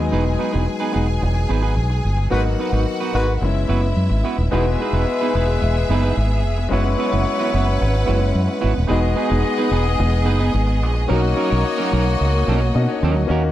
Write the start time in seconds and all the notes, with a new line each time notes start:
Already playing: F#3 G#3 B3 D#4 G#4 G#5
0.00 D#2
0.12 E1 B3 D#4 G#4 B4
0.25 muted clean electric guitar stroke
0.39 B3 D#4 G#4 B4
0.53 E1 B3 D#4 G#4 B4
0.67 muted clean electric guitar stroke
0.80 B3 D#4 G#4 B4
0.93 E1 B3 D#4 G#4 B4
1.08 muted clean electric guitar stroke
1.21 E1, muted clean electric guitar stroke
1.35 muted clean electric guitar stroke
1.49 G#1 B3 D#4 G#4 B4
1.62 B3 D#4 G#4 B4
1.76 B1, muted clean electric guitar stroke
1.90 muted clean electric guitar stroke
2.05 G1
2.17 muted clean electric guitar stroke
2.30 G#1 F#3 G#3 A#3 B3 D#4 F#4 B4 F#5
2.45 muted clean electric guitar stroke
2.59 B3 D#4 F#4 B4
2.72 G#1 B3 D#4 F#4 B4
2.86 muted clean electric guitar stroke
3.00 B3 D#4 F#4 B4
3.14 G#1 G#3 B3 D#4 F#4 B4
3.27 muted clean electric guitar stroke
3.41 F#1 G#3 B3 C#4 E4 E5
3.55 muted clean electric guitar stroke
3.69 F#1 B3 E4 F#4 B4
3.82 muted clean electric guitar stroke
3.96 F#2
4.10 G#1, muted clean electric guitar stroke
4.24 B3 E4 F#4 B4
4.38 D#1, muted clean electric guitar stroke
4.51 E1 G#3 B3 D#4 E4 F#4 G#4 B4 E5
4.66 muted clean electric guitar stroke
4.80 B3 D#4 G#4 B4
4.93 E1 B3 D#4 G#4 B4
5.08 muted clean electric guitar stroke
5.21 B3 D#4 G#4 B4
5.35 E1 B3 D#4 G#4 B4
5.48 muted clean electric guitar stroke
5.62 E1, muted clean electric guitar stroke
5.76 muted clean electric guitar stroke
5.89 F#1 B3 D#4 G#4 B4
6.03 B3 D#4 G#4 B4
6.17 G#1, muted clean electric guitar stroke
6.31 muted clean electric guitar stroke
6.45 F1
6.58 muted clean electric guitar stroke
6.69 F#1 F#3 G#3 B3 C#4 E4 F#4 B4 C#5 F#5
6.73 B4
6.85 muted clean electric guitar stroke
6.98 B3 E4 F#4 B4
7.11 F#1 B3 E4 F#4 B4
7.26 muted clean electric guitar stroke
7.39 B3 E4 F#4 B4
7.53 F#1 B3 E4 F#4 B4
7.68 muted clean electric guitar stroke
7.80 G#1, muted clean electric guitar stroke
7.94 muted clean electric guitar stroke
8.06 F#1 G#3 B3 C#4 E4 F#4 B4
8.21 muted clean electric guitar stroke
8.35 F#2
8.48 muted clean electric guitar stroke
8.61 G#1 B3 E4 F#4 B4
8.74 D#1, muted clean electric guitar stroke
8.87 E1 G#3 B3 D#4 G#4 B4 D#5
8.91 F#4
9.02 muted clean electric guitar stroke
9.16 B3 D#4 G#4 B4
9.30 E1 B3 D#4 G#4 B4
9.44 muted clean electric guitar stroke
9.57 B3 D#4 G#4 B4
9.71 E1 B3 D#4 G#4 B4
9.86 muted clean electric guitar stroke
9.98 E1, muted clean electric guitar stroke
10.12 muted clean electric guitar stroke
10.25 F#1 B3 D#4 G#4 B4
10.39 B3 D#4 G#4 B4
10.54 G#1, muted clean electric guitar stroke
10.67 muted clean electric guitar stroke
10.83 A#1
10.94 muted clean electric guitar stroke
11.08 B1 F#3 A#3 C#4 D#4 F#4 A#4 C#5 D#5
11.12 F#4
11.22 muted clean electric guitar stroke
11.36 F#3 C#4 D#4 A#4
11.50 B1 F#3 C#4 D#4 A#4
11.65 muted clean electric guitar stroke
11.78 F#3 C#4 D#4 A#4
11.93 B1 F#3 C#4 D#4 A#4
12.06 muted clean electric guitar stroke
12.21 C#2
12.35 muted clean electric guitar stroke
12.48 B1 F#3 C#4 D#4 A#4
12.62 muted clean electric guitar stroke
12.75 B2 A#3 C#4 D4 F#4 D#5
12.82 D#4
12.88 C#5, muted clean electric guitar stroke
13.03 D#2 F#3 C#4 D#4 A#4
13.16 D2, muted clean electric guitar stroke
13.27 D#2 A#3 C#4 D#4 F#4
13.31 A#4
13.44 muted clean electric guitar stroke